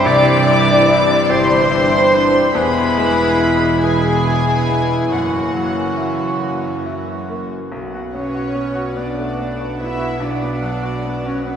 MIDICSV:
0, 0, Header, 1, 10, 480
1, 0, Start_track
1, 0, Tempo, 828729
1, 37, Time_signature, 6, 3, 24, 8
1, 1477, Tempo, 859599
1, 4357, Tempo, 831025
1, 6584, End_track
2, 0, Start_track
2, 0, Title_t, "Violin section"
2, 0, Program_c, 0, 48
2, 28, Note_on_c, 0, 86, 127
2, 732, Note_off_c, 0, 86, 0
2, 739, Note_on_c, 0, 84, 127
2, 1469, Note_on_c, 0, 83, 122
2, 1472, Note_off_c, 0, 84, 0
2, 2176, Note_on_c, 0, 80, 121
2, 2187, Note_off_c, 0, 83, 0
2, 2891, Note_off_c, 0, 80, 0
2, 2911, Note_on_c, 0, 78, 94
2, 3638, Note_off_c, 0, 78, 0
2, 4361, Note_on_c, 0, 78, 57
2, 6584, Note_off_c, 0, 78, 0
2, 6584, End_track
3, 0, Start_track
3, 0, Title_t, "Clarinet"
3, 0, Program_c, 1, 71
3, 34, Note_on_c, 1, 74, 127
3, 747, Note_off_c, 1, 74, 0
3, 750, Note_on_c, 1, 72, 127
3, 1463, Note_off_c, 1, 72, 0
3, 1490, Note_on_c, 1, 71, 113
3, 2184, Note_off_c, 1, 71, 0
3, 2192, Note_on_c, 1, 68, 102
3, 2740, Note_off_c, 1, 68, 0
3, 2920, Note_on_c, 1, 66, 76
3, 3620, Note_off_c, 1, 66, 0
3, 6584, End_track
4, 0, Start_track
4, 0, Title_t, "Flute section"
4, 0, Program_c, 2, 73
4, 27, Note_on_c, 2, 74, 127
4, 732, Note_off_c, 2, 74, 0
4, 744, Note_on_c, 2, 72, 127
4, 1472, Note_on_c, 2, 71, 100
4, 1474, Note_off_c, 2, 72, 0
4, 2182, Note_on_c, 2, 68, 100
4, 2189, Note_off_c, 2, 71, 0
4, 2731, Note_off_c, 2, 68, 0
4, 2901, Note_on_c, 2, 66, 78
4, 3618, Note_off_c, 2, 66, 0
4, 6584, End_track
5, 0, Start_track
5, 0, Title_t, "Violin section"
5, 0, Program_c, 3, 48
5, 0, Note_on_c, 3, 67, 105
5, 27, Note_on_c, 3, 55, 90
5, 139, Note_on_c, 3, 60, 91
5, 142, Note_off_c, 3, 55, 0
5, 264, Note_on_c, 3, 62, 92
5, 266, Note_off_c, 3, 60, 0
5, 388, Note_off_c, 3, 62, 0
5, 393, Note_on_c, 3, 64, 80
5, 512, Note_off_c, 3, 64, 0
5, 513, Note_on_c, 3, 62, 86
5, 632, Note_off_c, 3, 62, 0
5, 636, Note_on_c, 3, 60, 80
5, 753, Note_off_c, 3, 60, 0
5, 764, Note_on_c, 3, 55, 83
5, 878, Note_off_c, 3, 55, 0
5, 878, Note_on_c, 3, 60, 84
5, 995, Note_off_c, 3, 60, 0
5, 998, Note_on_c, 3, 62, 87
5, 1116, Note_off_c, 3, 62, 0
5, 1116, Note_on_c, 3, 64, 79
5, 1235, Note_on_c, 3, 62, 81
5, 1236, Note_off_c, 3, 64, 0
5, 1354, Note_on_c, 3, 60, 80
5, 1356, Note_off_c, 3, 62, 0
5, 1448, Note_off_c, 3, 67, 0
5, 1465, Note_on_c, 3, 64, 92
5, 1465, Note_on_c, 3, 68, 95
5, 1477, Note_off_c, 3, 60, 0
5, 2163, Note_off_c, 3, 64, 0
5, 2163, Note_off_c, 3, 68, 0
5, 2193, Note_on_c, 3, 68, 83
5, 2195, Note_on_c, 3, 64, 78
5, 2900, Note_off_c, 3, 68, 0
5, 2901, Note_off_c, 3, 64, 0
5, 2906, Note_on_c, 3, 61, 79
5, 2909, Note_on_c, 3, 66, 70
5, 4219, Note_off_c, 3, 61, 0
5, 4220, Note_off_c, 3, 66, 0
5, 4602, Note_on_c, 3, 73, 79
5, 5062, Note_off_c, 3, 73, 0
5, 5080, Note_on_c, 3, 74, 62
5, 5560, Note_off_c, 3, 74, 0
5, 5566, Note_on_c, 3, 76, 79
5, 5798, Note_off_c, 3, 76, 0
5, 5802, Note_on_c, 3, 74, 75
5, 6400, Note_off_c, 3, 74, 0
5, 6400, Note_on_c, 3, 73, 69
5, 6513, Note_on_c, 3, 71, 71
5, 6519, Note_off_c, 3, 73, 0
5, 6584, Note_off_c, 3, 71, 0
5, 6584, End_track
6, 0, Start_track
6, 0, Title_t, "French horn section"
6, 0, Program_c, 4, 60
6, 0, Note_on_c, 4, 55, 107
6, 0, Note_on_c, 4, 64, 119
6, 1447, Note_off_c, 4, 55, 0
6, 1448, Note_off_c, 4, 64, 0
6, 1475, Note_on_c, 4, 64, 100
6, 1480, Note_on_c, 4, 56, 103
6, 2824, Note_off_c, 4, 56, 0
6, 2919, Note_on_c, 4, 58, 73
6, 4152, Note_off_c, 4, 64, 0
6, 4156, Note_off_c, 4, 58, 0
6, 4353, Note_on_c, 4, 59, 74
6, 4360, Note_on_c, 4, 66, 72
6, 6584, Note_off_c, 4, 59, 0
6, 6584, Note_off_c, 4, 66, 0
6, 6584, End_track
7, 0, Start_track
7, 0, Title_t, "Grand piano"
7, 0, Program_c, 5, 0
7, 0, Control_c, 5, 64, 127
7, 0, Note_on_c, 5, 62, 74
7, 32, Note_on_c, 5, 36, 99
7, 48, Control_c, 5, 64, 0
7, 147, Control_c, 5, 64, 127
7, 179, Note_off_c, 5, 62, 0
7, 270, Note_on_c, 5, 55, 80
7, 508, Note_on_c, 5, 64, 67
7, 653, Note_off_c, 5, 55, 0
7, 753, Note_on_c, 5, 67, 82
7, 893, Note_off_c, 5, 64, 0
7, 988, Note_on_c, 5, 64, 68
7, 1138, Note_off_c, 5, 67, 0
7, 1235, Note_on_c, 5, 62, 76
7, 1378, Note_off_c, 5, 64, 0
7, 1452, Note_off_c, 5, 36, 0
7, 1475, Note_on_c, 5, 40, 88
7, 1478, Note_off_c, 5, 62, 0
7, 1488, Control_c, 5, 64, 0
7, 1589, Control_c, 5, 64, 127
7, 1715, Note_on_c, 5, 56, 69
7, 1953, Note_on_c, 5, 64, 68
7, 2096, Note_off_c, 5, 56, 0
7, 2196, Note_on_c, 5, 68, 59
7, 2337, Note_off_c, 5, 64, 0
7, 2435, Note_on_c, 5, 64, 61
7, 2578, Note_off_c, 5, 68, 0
7, 2672, Note_on_c, 5, 59, 52
7, 2819, Note_off_c, 5, 64, 0
7, 2890, Note_off_c, 5, 40, 0
7, 2912, Note_on_c, 5, 42, 63
7, 2914, Note_off_c, 5, 59, 0
7, 2925, Control_c, 5, 64, 0
7, 3026, Control_c, 5, 64, 127
7, 3152, Note_on_c, 5, 54, 55
7, 3389, Note_on_c, 5, 64, 51
7, 3541, Note_off_c, 5, 54, 0
7, 3635, Note_on_c, 5, 66, 57
7, 3780, Note_off_c, 5, 64, 0
7, 3883, Note_on_c, 5, 64, 50
7, 4022, Note_off_c, 5, 66, 0
7, 4121, Note_on_c, 5, 58, 50
7, 4265, Note_off_c, 5, 64, 0
7, 4335, Note_off_c, 5, 42, 0
7, 4359, Note_off_c, 5, 58, 0
7, 4361, Note_on_c, 5, 35, 67
7, 4370, Control_c, 5, 64, 0
7, 4481, Control_c, 5, 64, 127
7, 4491, Note_on_c, 5, 66, 49
7, 4610, Note_on_c, 5, 59, 47
7, 4680, Note_off_c, 5, 66, 0
7, 4726, Note_on_c, 5, 66, 54
7, 4800, Note_off_c, 5, 59, 0
7, 4845, Note_on_c, 5, 59, 48
7, 4918, Note_off_c, 5, 66, 0
7, 4961, Note_on_c, 5, 66, 58
7, 5037, Note_off_c, 5, 59, 0
7, 5083, Note_on_c, 5, 59, 49
7, 5155, Note_off_c, 5, 66, 0
7, 5204, Note_on_c, 5, 57, 41
7, 5275, Note_off_c, 5, 59, 0
7, 5324, Note_off_c, 5, 57, 0
7, 5333, Note_on_c, 5, 59, 45
7, 5453, Note_on_c, 5, 66, 47
7, 5519, Note_off_c, 5, 59, 0
7, 5568, Note_on_c, 5, 59, 54
7, 5639, Note_off_c, 5, 66, 0
7, 5674, Note_on_c, 5, 66, 50
7, 5756, Note_off_c, 5, 59, 0
7, 5780, Note_off_c, 5, 35, 0
7, 5796, Note_on_c, 5, 35, 61
7, 5812, Control_c, 5, 64, 0
7, 5869, Note_off_c, 5, 66, 0
7, 5913, Control_c, 5, 64, 127
7, 5928, Note_on_c, 5, 59, 50
7, 6040, Note_on_c, 5, 54, 52
7, 6116, Note_off_c, 5, 59, 0
7, 6158, Note_on_c, 5, 66, 54
7, 6232, Note_off_c, 5, 54, 0
7, 6290, Note_on_c, 5, 59, 46
7, 6350, Note_off_c, 5, 66, 0
7, 6406, Note_on_c, 5, 66, 51
7, 6476, Note_off_c, 5, 59, 0
7, 6520, Note_on_c, 5, 59, 51
7, 6584, Note_off_c, 5, 35, 0
7, 6584, Note_off_c, 5, 59, 0
7, 6584, Note_off_c, 5, 66, 0
7, 6584, End_track
8, 0, Start_track
8, 0, Title_t, "Viola section"
8, 0, Program_c, 6, 48
8, 0, Note_on_c, 6, 52, 101
8, 0, Note_on_c, 6, 62, 107
8, 1452, Note_off_c, 6, 52, 0
8, 1454, Note_off_c, 6, 62, 0
8, 1477, Note_on_c, 6, 59, 92
8, 1480, Note_on_c, 6, 52, 82
8, 2169, Note_off_c, 6, 59, 0
8, 2170, Note_off_c, 6, 52, 0
8, 2192, Note_on_c, 6, 52, 79
8, 2192, Note_on_c, 6, 59, 86
8, 2899, Note_off_c, 6, 52, 0
8, 2899, Note_off_c, 6, 59, 0
8, 2913, Note_on_c, 6, 58, 67
8, 2918, Note_on_c, 6, 52, 70
8, 4224, Note_off_c, 6, 52, 0
8, 4244, Note_off_c, 6, 58, 0
8, 4607, Note_on_c, 6, 61, 82
8, 5065, Note_off_c, 6, 61, 0
8, 5097, Note_on_c, 6, 62, 77
8, 5568, Note_off_c, 6, 62, 0
8, 5573, Note_on_c, 6, 64, 90
8, 5807, Note_off_c, 6, 64, 0
8, 5808, Note_on_c, 6, 62, 89
8, 6391, Note_off_c, 6, 62, 0
8, 6409, Note_on_c, 6, 61, 83
8, 6521, Note_on_c, 6, 59, 78
8, 6524, Note_off_c, 6, 61, 0
8, 6584, Note_off_c, 6, 59, 0
8, 6584, End_track
9, 0, Start_track
9, 0, Title_t, "Cello section"
9, 0, Program_c, 7, 48
9, 33, Note_on_c, 7, 36, 96
9, 629, Note_off_c, 7, 36, 0
9, 751, Note_on_c, 7, 43, 97
9, 1356, Note_off_c, 7, 43, 0
9, 1478, Note_on_c, 7, 40, 81
9, 2891, Note_off_c, 7, 40, 0
9, 2917, Note_on_c, 7, 42, 65
9, 4224, Note_off_c, 7, 42, 0
9, 4362, Note_on_c, 7, 47, 56
9, 6584, Note_off_c, 7, 47, 0
9, 6584, End_track
10, 0, Start_track
10, 0, Title_t, "Double bass section"
10, 0, Program_c, 8, 48
10, 30, Note_on_c, 8, 36, 107
10, 627, Note_off_c, 8, 36, 0
10, 745, Note_on_c, 8, 31, 94
10, 1353, Note_off_c, 8, 31, 0
10, 1475, Note_on_c, 8, 28, 92
10, 2890, Note_off_c, 8, 28, 0
10, 2914, Note_on_c, 8, 30, 79
10, 4223, Note_off_c, 8, 30, 0
10, 4355, Note_on_c, 8, 35, 67
10, 6584, Note_off_c, 8, 35, 0
10, 6584, End_track
0, 0, End_of_file